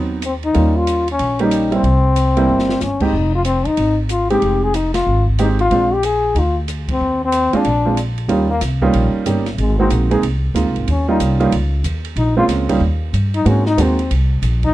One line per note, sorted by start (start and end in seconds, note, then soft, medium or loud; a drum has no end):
0.00 0.51 D#2 medium
0.00 0.20 F#3 medium
0.00 0.20 B3 medium
0.00 0.20 C4 medium
0.00 0.20 D#4 medium
0.22 0.34 C4 medium
0.22 hi-hat pedal medium
0.22 ride medium
0.43 0.79 D#4 medium
0.43 ride soft
0.54 1.16 D#2 medium
0.54 1.03 G3 medium
0.54 1.03 A#3 medium
0.54 1.03 C#4 medium
0.54 1.03 F4 medium
0.54 ride medium
0.77 1.08 F4 medium
0.87 hi-hat pedal medium
0.87 ride medium
1.08 ride soft
1.12 1.40 C#4 medium
1.19 1.81 A#1 medium
1.19 ride medium
1.39 1.70 G3 medium
1.39 1.70 A#3 medium
1.39 1.70 C#4 medium
1.39 1.71 D#4 medium
1.39 1.70 G4 medium
1.39 ride soft
1.51 hi-hat pedal medium
1.51 ride medium
1.71 1.82 G3 medium
1.71 1.82 A#3 medium
1.71 1.82 C4 medium
1.71 1.82 E4 medium
1.71 ride soft
1.76 2.84 C4 medium
1.83 2.45 C2 medium
1.83 ride soft
2.16 hi-hat pedal medium
2.16 ride medium
2.37 2.78 G3 medium
2.37 2.79 A#3 medium
2.37 2.78 C4 medium
2.37 2.78 E4 medium
2.37 ride soft
2.49 2.78 G1 medium
2.59 snare medium
2.69 snare medium
2.80 3.11 G1 medium
2.80 3.04 C#4 medium
2.80 snare medium
2.80 hi-hat pedal medium
3.00 3.12 G#3 medium
3.00 3.12 C4 medium
3.00 3.12 D#4 medium
3.00 3.34 D#4 medium
3.00 3.12 G4 medium
3.00 kick medium
3.00 crash medium
3.13 3.62 F1 medium
3.35 3.45 F4 medium
3.45 3.68 C4 medium
3.45 hi-hat pedal medium
3.45 ride medium
3.65 3.77 D#2 medium
3.65 3.98 D#4 loud
3.65 ride soft
3.77 4.39 G#1 medium
3.77 ride medium
4.09 4.29 F4 medium
4.09 hi-hat pedal medium
4.09 ride medium
4.30 4.72 G#3 medium
4.30 4.72 C4 medium
4.30 4.72 D#4 medium
4.30 4.65 G4 medium
4.30 4.72 G4 medium
4.30 ride soft
4.42 5.03 F1 medium
4.42 ride soft
4.64 4.77 G#4 loud
4.74 4.94 D#4 medium
4.74 hi-hat pedal medium
4.74 ride medium
4.94 5.24 F4 medium
4.94 snare medium
4.94 ride medium
5.06 5.68 G#1 medium
5.27 kick soft
5.38 5.57 G#3 medium
5.38 5.58 C4 medium
5.38 5.58 D#4 medium
5.38 5.49 D#4 medium
5.38 5.57 G4 medium
5.38 hi-hat pedal medium
5.38 ride medium
5.59 5.95 F4 medium
5.59 ride soft
5.70 6.32 A#1 medium
5.70 5.90 G#3 medium
5.70 5.90 C4 medium
5.70 5.90 D4 medium
5.70 5.90 F4 medium
5.70 ride medium
5.94 6.06 G4 medium
6.03 6.37 G#4 loud
6.03 hi-hat pedal medium
6.03 ride medium
6.35 6.97 D2 medium
6.35 6.40 D#4 medium
6.35 6.58 F4 medium
6.35 ride medium
6.68 hi-hat pedal medium
6.68 ride medium
6.88 7.20 C4 medium
6.88 kick medium
6.88 ride medium
7.01 7.49 D#2 medium
7.25 7.59 C4 loud
7.32 hi-hat pedal medium
7.32 ride medium
7.53 7.64 G#3 medium
7.53 7.64 C4 medium
7.53 7.64 D4 medium
7.53 7.64 F4 medium
7.53 muted upright bass stroke soft
7.53 ride soft
7.58 7.99 D4 medium
7.65 8.26 A#1 medium
7.65 ride medium
7.86 7.96 G#3 medium
7.86 7.96 C4 medium
7.86 7.96 D4 medium
7.86 7.96 F4 medium
7.97 hi-hat pedal medium
7.97 ride medium
8.18 ride soft
8.28 8.60 D#2 medium
8.28 8.47 G3 medium
8.28 8.49 G3 medium
8.28 8.48 A#3 medium
8.28 8.47 C#4 medium
8.28 8.48 D#4 medium
8.28 8.47 F4 medium
8.28 ride medium
8.50 8.61 A#3 medium
8.61 8.93 C2 medium
8.61 snare soft
8.61 hi-hat pedal medium
8.61 ride medium
8.82 9.24 G3 medium
8.82 9.24 A#3 medium
8.82 9.24 C#4 medium
8.82 9.24 D#4 medium
8.82 9.24 F4 medium
8.82 kick medium
8.93 9.13 A#1 medium
8.93 ride medium
9.14 muted upright bass stroke soft
9.26 9.57 G1 medium
9.26 9.44 G3 medium
9.26 9.44 A#3 medium
9.26 9.45 C#4 medium
9.26 9.44 D#4 medium
9.26 9.45 G4 medium
9.26 hi-hat pedal medium
9.26 ride medium
9.46 snare soft
9.46 ride soft
9.58 9.89 G#1 medium
9.58 9.78 G#3 medium
9.58 ride medium
9.79 10.09 G#3 medium
9.79 10.09 A#3 medium
9.79 9.90 C4 medium
9.79 10.09 C4 medium
9.79 10.09 D#4 medium
9.79 10.10 F#4 medium
9.90 10.21 A#1 medium
9.90 hi-hat pedal medium
9.90 ride medium
10.11 10.22 G#3 medium
10.11 10.22 A#3 medium
10.11 10.22 C4 medium
10.11 10.22 D#4 medium
10.11 10.22 G#4 medium
10.11 ride soft
10.22 10.54 C2 medium
10.22 ride medium
10.54 10.66 D2 medium
10.54 10.87 G#3 medium
10.54 10.87 A#3 medium
10.54 10.87 C4 soft
10.54 10.87 D#4 soft
10.54 10.88 F4 medium
10.54 hi-hat pedal soft
10.54 ride medium
10.66 10.76 C2 medium
10.76 10.87 G#1 medium
10.76 ride soft
10.88 11.19 D#2 medium
10.88 11.08 C#4 medium
10.88 ride medium
11.08 11.38 G3 medium
11.08 11.38 A#3 medium
11.08 11.39 C#4 medium
11.08 11.39 D#4 medium
11.08 11.20 D#4 medium
11.08 11.38 F4 medium
11.20 11.51 C2 medium
11.20 hi-hat pedal medium
11.20 ride medium
11.40 11.51 G3 medium
11.40 11.51 A#3 medium
11.40 11.51 C#4 medium
11.40 11.51 D#4 medium
11.40 11.51 F4 medium
11.40 ride soft
11.52 11.83 C#2 medium
11.52 ride medium
11.84 12.15 D#2 medium
11.84 hi-hat pedal medium
11.84 ride medium
12.05 ride soft
12.16 12.47 A#1 medium
12.16 12.36 D#4 medium
12.16 ride medium
12.37 12.67 G#3 medium
12.37 12.67 A#3 medium
12.37 12.67 C4 medium
12.37 12.67 C#4 medium
12.37 12.67 F4 medium
12.37 12.45 F4 loud
12.48 12.80 C#2 medium
12.48 snare soft
12.48 hi-hat pedal medium
12.48 ride medium
12.69 12.80 G3 medium
12.69 12.80 A#3 medium
12.69 12.80 C#4 medium
12.69 12.80 D#4 medium
12.69 12.80 F4 medium
12.69 kick medium
12.69 ride medium
12.80 13.12 D#2 medium
13.13 13.45 G2 medium
13.13 hi-hat pedal medium
13.13 ride medium
13.34 13.49 D#4 medium
13.34 ride soft
13.45 13.77 G#2 medium
13.45 13.64 G#3 medium
13.45 13.64 A#3 medium
13.45 13.64 C4 medium
13.45 13.66 C#4 medium
13.45 13.64 D#4 medium
13.45 13.64 F#4 medium
13.45 ride medium
13.66 13.83 D#4 loud
13.66 snare soft
13.77 14.09 D#2 medium
13.77 13.96 G#3 medium
13.77 13.96 A#3 medium
13.77 13.96 C4 medium
13.77 13.96 D#4 medium
13.77 13.96 F#4 medium
13.77 hi-hat pedal medium
13.77 ride medium
13.82 14.12 C4 medium
13.99 ride soft
14.11 14.41 C2 medium
14.11 ride medium
14.42 14.73 A#1 medium
14.42 hi-hat pedal soft
14.42 ride medium
14.63 14.74 D#4 loud
14.63 kick medium
14.63 ride soft